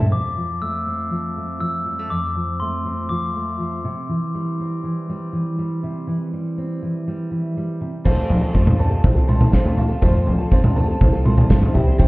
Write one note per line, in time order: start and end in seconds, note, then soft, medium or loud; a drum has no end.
0.00 0.13 C4 soft
0.00 0.12 E4 soft
0.00 0.11 A4 medium
0.00 0.11 C5 medium
0.00 0.11 E5 medium
0.00 0.12 C6 medium
0.11 2.07 F2 medium
0.11 0.58 D6 medium
0.36 1.10 F3 soft
0.62 1.36 A3 soft
0.62 1.59 E6 medium
0.87 2.85 C4 soft
1.11 1.60 F3 soft
1.37 1.86 A3 soft
1.60 2.08 F3 soft
1.60 2.12 E6 medium
1.86 1.99 G3 soft
1.99 2.11 A3 soft
2.10 3.82 F2 medium
2.10 2.57 D6 medium
2.35 3.09 F3 soft
2.60 3.35 A3 soft
2.60 3.11 C6 medium
2.85 4.60 C4 soft
3.09 3.59 F3 medium
3.09 3.80 D6 medium
3.36 3.82 A3 soft
3.60 3.82 F3 soft
3.84 4.09 C3 medium
4.09 4.83 E3 soft
4.35 5.09 G3 soft
4.60 6.57 C4 soft
4.84 5.32 E3 soft
5.09 5.58 G3 soft
5.33 5.80 E3 soft
5.59 6.32 G3 soft
5.83 6.08 C3 medium
6.07 6.81 E3 medium
6.33 7.06 G3 soft
6.58 7.78 C4 soft
6.83 7.30 E3 soft
7.08 7.56 G3 soft
7.31 7.78 E3 soft
7.57 9.79 G3 soft
7.81 8.03 C3 medium
8.05 8.27 F2 medium
8.05 8.42 F3 medium
8.05 8.42 A3 medium
8.05 8.42 C4 medium
8.05 8.41 F4 medium
8.05 8.40 A4 medium
8.05 8.53 C5 medium
8.05 kick soft
8.05 floor tom medium
8.05 crash medium
8.30 8.52 F3 medium
8.30 floor tom medium
8.41 8.53 C4 soft
8.41 8.53 F4 soft
8.41 8.54 A4 soft
8.53 8.98 F2 medium
8.53 8.79 F3 medium
8.53 8.76 A3 medium
8.53 8.77 C4 medium
8.53 8.78 F4 medium
8.53 8.79 A4 medium
8.53 9.03 C5 medium
8.53 kick soft
8.67 floor tom medium
8.67 mid tom medium
8.77 8.91 A3 medium
8.77 8.91 C4 soft
8.77 8.90 F4 medium
8.77 8.89 A4 medium
8.77 9.78 A5 medium
8.77 floor tom medium
8.90 9.16 C4 soft
8.90 9.15 F4 medium
8.90 9.14 A4 soft
9.04 9.47 C2 medium
9.04 9.52 C5 medium
9.04 kick medium
9.04 floor tom medium
9.15 9.27 C4 soft
9.15 9.28 F4 soft
9.15 9.28 A4 medium
9.27 9.51 A3 medium
9.27 9.52 C4 medium
9.27 9.52 F4 medium
9.27 9.52 A4 medium
9.27 10.27 C6 medium
9.27 mid tom medium
9.41 floor tom medium
9.41 mid tom medium
9.52 9.75 F2 medium
9.52 9.77 F3 medium
9.52 9.75 A3 medium
9.52 9.76 C4 medium
9.52 9.77 F4 medium
9.52 9.78 A4 medium
9.52 10.01 C5 medium
9.52 kick soft
9.52 snare medium
9.66 floor tom medium
9.76 9.90 A3 medium
9.76 9.90 C4 medium
9.76 9.89 F4 medium
9.76 9.87 A4 medium
9.76 10.77 F5 medium
9.76 floor tom medium
9.89 10.01 C4 soft
9.89 10.02 F4 soft
9.89 10.02 A4 medium
10.01 10.24 F2 medium
10.01 10.39 F3 medium
10.01 10.39 A3 medium
10.01 10.40 C4 medium
10.01 10.39 F4 medium
10.01 10.37 A4 medium
10.01 10.50 C5 medium
10.01 kick medium
10.01 floor tom medium
10.27 10.49 F3 medium
10.27 floor tom medium
10.38 10.51 C4 soft
10.38 10.51 F4 soft
10.38 10.51 A4 medium
10.51 10.95 F2 medium
10.51 10.76 F3 medium
10.51 10.74 A3 medium
10.51 10.75 C4 medium
10.51 10.76 F4 medium
10.51 10.76 A4 medium
10.51 10.99 C5 medium
10.51 kick medium
10.64 floor tom medium
10.64 mid tom medium
10.75 10.88 A3 medium
10.75 10.89 C4 medium
10.75 10.88 F4 medium
10.75 10.86 A4 medium
10.75 11.75 A5 medium
10.75 floor tom medium
10.88 11.14 C4 soft
10.88 11.13 F4 soft
10.88 11.11 A4 soft
11.01 11.44 C2 loud
11.01 11.48 C5 medium
11.01 kick medium
11.01 floor tom medium
11.12 11.25 C4 soft
11.12 11.26 F4 medium
11.12 11.25 A4 medium
11.25 11.49 A3 medium
11.25 11.49 C4 medium
11.25 11.49 F4 medium
11.25 11.50 A4 medium
11.25 11.75 C6 medium
11.25 mid tom medium
11.38 floor tom medium
11.38 mid tom medium
11.49 11.61 G2 medium
11.49 11.75 F3 medium
11.49 11.74 A3 medium
11.49 11.74 C4 medium
11.49 11.75 F4 medium
11.49 11.76 A4 medium
11.49 11.75 C5 medium
11.49 kick medium
11.49 snare medium
11.63 floor tom medium
11.74 12.08 C2 loud
11.74 11.87 G3 medium
11.74 11.87 C4 medium
11.74 11.86 E4 medium
11.74 11.86 C5 medium
11.74 12.08 E5 medium
11.74 floor tom medium
11.87 11.98 G3 soft
11.87 11.98 C4 soft
11.87 11.99 E4 soft
11.87 11.99 C5 soft
11.98 12.08 C3 medium
11.98 12.08 E3 medium
11.98 12.08 G3 medium
11.98 12.08 C4 medium
11.98 12.08 E4 medium
11.98 12.08 C5 medium
11.98 12.08 C5 loud
11.98 kick medium
11.98 floor tom medium